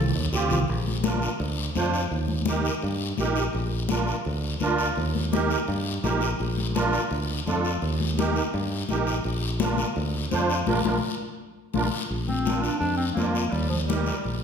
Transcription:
0.00 0.11 C2 loud
0.00 0.29 A4 loud
0.15 0.31 D#2 medium
0.33 0.49 D2 medium
0.33 0.58 C4 medium
0.33 0.58 F4 medium
0.33 0.58 G4 medium
0.33 short guiro medium
0.50 0.67 C2 medium
0.50 low conga medium
0.50 short guiro medium
0.68 1.26 A#1 medium
0.68 high conga soft
0.68 long guiro medium
0.87 high conga medium
1.03 1.29 D4 medium
1.03 1.29 F4 medium
1.03 1.30 A#4 medium
1.03 high conga medium
1.03 short guiro medium
1.22 short guiro medium
1.40 1.69 D2 medium
1.40 high conga soft
1.40 long guiro medium
1.75 2.05 F2 medium
1.75 2.01 D4 medium
1.75 2.01 F4 medium
1.75 2.01 C5 medium
1.75 high conga medium
1.75 short guiro medium
1.94 short guiro medium
2.11 2.69 D#2 medium
2.11 high conga soft
2.11 long guiro medium
2.28 high conga medium
2.46 2.72 D#4 medium
2.46 2.72 G4 medium
2.46 2.73 A#4 medium
2.46 high conga medium
2.46 short guiro medium
2.65 short guiro medium
2.82 3.12 G2 medium
2.82 high conga soft
2.82 long guiro medium
3.18 3.47 A#1 medium
3.18 3.44 D#4 medium
3.18 3.44 G4 medium
3.18 3.44 A#4 medium
3.18 high conga medium
3.18 short guiro medium
3.36 short guiro medium
3.53 4.11 A#1 medium
3.53 high conga soft
3.53 long guiro medium
3.89 4.15 D4 medium
3.89 4.15 F4 medium
3.89 4.15 A#4 medium
3.89 high conga medium
3.89 short guiro medium
4.07 short guiro medium
4.25 4.55 D2 medium
4.25 high conga soft
4.25 long guiro medium
4.60 4.90 D2 medium
4.60 4.86 D4 medium
4.60 4.86 F4 medium
4.60 4.87 A#4 loud
4.60 high conga medium
4.60 short guiro medium
4.78 short guiro medium
4.96 5.54 D#2 medium
4.96 high conga soft
4.96 long guiro medium
5.15 high conga medium
5.32 5.57 D#4 medium
5.32 5.58 G4 medium
5.32 5.58 A#4 medium
5.32 high conga loud
5.32 short guiro medium
5.50 short guiro medium
5.68 5.97 G2 medium
5.68 high conga soft
5.68 long guiro medium
6.03 6.32 A#1 medium
6.03 6.28 D#4 medium
6.03 6.29 G4 medium
6.03 6.29 A#4 medium
6.03 high conga medium
6.03 short guiro medium
6.21 short guiro medium
6.39 6.97 A#1 medium
6.39 high conga soft
6.39 long guiro medium
6.58 high conga medium
6.75 7.00 D4 medium
6.75 7.00 F4 medium
6.75 7.01 A#4 medium
6.75 high conga medium
6.75 short guiro medium
6.93 short guiro medium
7.11 7.40 D2 medium
7.11 high conga soft
7.11 long guiro medium
7.46 7.76 F2 medium
7.46 7.72 D4 medium
7.46 7.72 F4 medium
7.46 7.72 A4 medium
7.46 high conga medium
7.46 short guiro medium
7.65 short guiro medium
7.82 8.39 D#2 medium
7.82 high conga soft
7.82 long guiro medium
8.01 high conga medium
8.18 8.43 D#4 medium
8.18 8.43 G4 medium
8.18 8.43 A#4 medium
8.18 high conga loud
8.18 short guiro medium
8.36 short guiro medium
8.54 8.82 G2 medium
8.54 high conga soft
8.54 long guiro medium
8.89 9.19 A#1 medium
8.89 9.14 D#4 medium
8.89 9.15 G4 medium
8.89 9.15 A#4 medium
8.89 high conga medium
8.89 short guiro medium
9.07 short guiro medium
9.24 9.82 A#1 medium
9.24 high conga soft
9.24 long guiro medium
9.60 9.86 D4 medium
9.60 9.86 F4 medium
9.60 9.86 A#4 medium
9.60 high conga loud
9.60 short guiro medium
9.78 high conga medium
9.78 short guiro medium
9.96 10.25 D2 medium
9.96 high conga soft
9.96 long guiro medium
10.31 10.61 F2 medium
10.31 10.57 D4 medium
10.31 10.57 F4 medium
10.31 10.57 C5 medium
10.31 high conga medium
10.31 short guiro medium
10.50 short guiro medium
10.67 10.81 A#1 loud
10.67 10.80 D4 loud
10.67 10.80 F4 medium
10.67 10.79 A#4 loud
10.67 high conga medium
10.67 long guiro medium
10.85 10.99 A#1 loud
10.85 10.97 D4 medium
10.85 10.97 F4 medium
10.85 10.97 A#4 medium
10.85 high conga medium
10.85 long guiro medium
11.74 11.88 A#1 medium
11.74 11.86 D4 medium
11.74 11.87 F4 medium
11.74 11.87 A#4 medium
11.74 high conga medium
11.74 long guiro medium
12.09 12.68 A#1 medium
12.09 high conga soft
12.09 long guiro medium
12.28 12.63 C4 medium
12.28 high conga medium
12.45 12.71 D4 medium
12.45 12.71 F4 medium
12.45 12.71 A#4 medium
12.45 high conga medium
12.45 short guiro medium
12.61 12.78 D4 medium
12.61 high conga medium
12.61 short guiro medium
12.79 13.10 F2 medium
12.79 12.96 D4 loud
12.79 high conga soft
12.79 long guiro medium
12.97 13.06 C4 medium
13.14 13.46 F2 medium
13.14 13.52 A#3 medium
13.14 13.42 D4 medium
13.14 13.42 F4 medium
13.14 13.43 A#4 medium
13.14 high conga medium
13.14 short guiro medium
13.35 short guiro medium
13.50 14.10 D#2 medium
13.50 13.69 G3 medium
13.50 high conga soft
13.50 long guiro medium
13.69 13.78 F3 medium
13.69 high conga medium
13.87 14.43 G3 medium
13.87 14.14 D#4 medium
13.87 14.14 G4 medium
13.87 14.14 A#4 medium
13.87 high conga medium
13.87 short guiro medium
14.06 high conga medium
14.06 short guiro medium
14.24 14.43 A#1 medium
14.24 high conga soft
14.24 long guiro medium

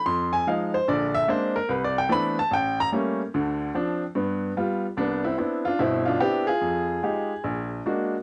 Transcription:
0.06 0.41 F2 medium
0.06 0.32 C6 medium
0.33 0.46 G#5 loud
0.47 0.75 F3 medium
0.47 0.75 G#3 medium
0.47 0.76 D#4 medium
0.47 0.73 F5 medium
0.74 0.88 C5 medium
0.88 1.23 A#1 medium
0.88 1.23 D3 medium
0.88 1.14 D5 medium
1.14 1.28 E5 loud
1.27 1.56 G#3 medium
1.27 1.57 A#3 medium
1.27 1.57 C4 medium
1.27 1.57 D4 medium
1.27 1.55 C5 medium
1.56 1.69 A#4 medium
1.69 2.05 C2 medium
1.69 1.83 B4 medium
1.84 1.97 D5 medium
1.98 2.11 G5 loud
2.09 2.38 E3 medium
2.09 2.38 A3 medium
2.09 2.38 B3 medium
2.09 2.38 C4 medium
2.09 2.38 D4 medium
2.09 2.37 B5 loud
2.39 2.52 A5 loud
2.51 2.87 A1 medium
2.51 2.78 G5 loud
2.80 2.88 A#5 loud
2.92 3.20 G3 medium
2.92 3.21 A3 medium
2.92 3.21 A#3 medium
2.92 3.21 C#4 medium
3.34 3.69 D2 medium
3.34 3.69 D3 medium
3.74 4.03 F3 medium
3.74 4.03 C4 medium
3.74 4.03 D4 medium
4.15 4.51 G2 medium
4.15 4.51 B3 medium
4.57 4.85 G3 medium
4.57 4.85 B3 medium
4.57 4.85 F4 medium
4.97 5.33 C2 medium
4.97 5.24 B3 medium
4.97 5.23 D4 medium
5.25 5.37 C4 medium
5.25 5.37 E4 medium
5.38 5.67 B3 medium
5.38 5.67 C4 soft
5.38 5.66 D4 soft
5.38 5.67 E4 medium
5.65 5.80 D4 medium
5.65 5.80 F4 medium
5.79 6.15 G1 medium
5.79 6.15 B2 medium
5.79 6.05 C4 medium
5.79 6.07 E4 medium
6.06 6.19 D4 medium
6.06 6.21 F4 medium
6.20 6.49 B3 medium
6.20 6.49 C4 medium
6.20 6.49 D4 medium
6.20 6.49 E4 medium
6.20 6.46 G4 loud
6.47 7.02 F4 medium
6.47 7.67 G#4 medium
6.61 6.97 F2 medium
7.03 7.31 G#3 soft
7.03 7.32 D#4 soft
7.03 7.32 F4 soft
7.03 7.32 G4 medium
7.44 7.80 A#1 medium
7.86 8.14 G#3 medium
7.86 8.14 A#3 soft
7.86 8.14 D4 soft
7.86 8.15 F#4 medium

